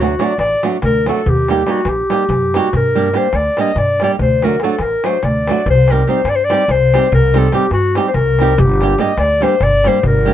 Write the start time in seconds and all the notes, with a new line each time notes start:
Already playing: D2
0.00 F#3 A3 D4 F#4, darbuka tek
0.11 darbuka tek
0.19 F#3 A3 D4 F#4 D5, darbuka tek
0.38 A1 D5, darbuka tek
0.51 darbuka tek
0.63 F#3 A3 D4 F#4, darbuka tek
0.73 darbuka tek
0.82 D2 A#4, darbuka tek, darbuka dum
0.94 darbuka tek
1.06 F#3 A3 D4 F#4 A4, darbuka tek
1.26 D#2 G4, darbuka dum
1.37 darbuka tek
1.48 G3 A#3 D#4 G4, darbuka tek
1.66 G3 A#3 D#4 F#4 G4, darbuka tek
1.85 A#1 G4, darbuka tek
1.98 darbuka tek
2.10 G3 A#3 D#4 G4, darbuka tek
2.20 darbuka tek
2.29 F#2, darbuka tek, darbuka dum
2.42 darbuka tek
2.54 G3 A#3 D#4 F#4 G4, darbuka tek
2.73 G2 A#4, darbuka dum
2.84 darbuka tek
2.95 G3 A#3 D4 G4
3.05 darbuka tek
3.13 G3 A#3 D4 G4, darbuka tek
3.17 C5
3.33 D2 D5, darbuka tek
3.45 darbuka tek
3.57 G3 A#3 D4 G4 D#5, darbuka tek
3.67 darbuka tek
3.76 G2 D5, darbuka tek, darbuka dum
3.89 darbuka tek
4.00 G3 A#3 D4 G4 D5, darbuka tek
4.19 D2 C5, darbuka dum
4.31 darbuka tek
4.42 F#3 A3 D4 F#4 A#4, darbuka tek
4.51 darbuka tek
4.60 F#3 A3 A4, darbuka tek
4.64 D4 F#4
4.70 darbuka tek
4.79 A1 A#4, darbuka tek
4.91 darbuka tek
5.04 F#3 A3 D4 F#4 C5, darbuka tek
5.14 darbuka tek
5.23 D2 D5, darbuka tek, darbuka dum
5.35 darbuka tek
5.47 F#3 A3 D4 F#4, darbuka tek
5.58 darbuka tek
5.66 C2, darbuka dum
5.70 C5
5.88 G3 C4 D#4 A#4, darbuka tek
5.92 G4
5.97 darbuka tek
6.07 G3 C4 D#4 G4 C5
6.16 darbuka tek
6.24 G2, darbuka tek
6.29 D5
6.35 C5, darbuka tek
6.44 D5
6.50 G3 C4 D#4 G4, darbuka tek
6.68 C2 C5, darbuka tek, darbuka dum
6.94 G3 C4 D#4 G4, darbuka tek
7.12 C2 A#4, darbuka dum
7.34 G3 C4 D#4 G4 A4, darbuka tek
7.44 darbuka tek
7.52 G3 C4 D#4 G4, darbuka tek
7.62 darbuka tek
7.71 G2 F#4, darbuka tek
7.84 darbuka tek
7.95 G3 C4 D#4 G4, darbuka tek
8.08 C5
8.14 C2 A#4, darbuka tek, darbuka dum
8.39 G3 C4 D#4 G4, darbuka tek
8.58 G1 G4, darbuka dum
8.81 G3 A#3 D4 G4, darbuka tek
8.90 darbuka tek
8.98 G3 A#3 D4 G4 D#5, darbuka tek
9.08 darbuka tek
9.17 D2 D5, darbuka tek
9.30 darbuka tek
9.40 G3 A#3 D4 G4 C5, darbuka tek
9.60 G1 D5, darbuka tek, darbuka dum
9.84 G3 A#3 D4 G4 C5, darbuka tek
9.95 darbuka tek
10.03 G1 A#4, darbuka dum
10.15 darbuka tek
10.25 G3 A#3 D4 G4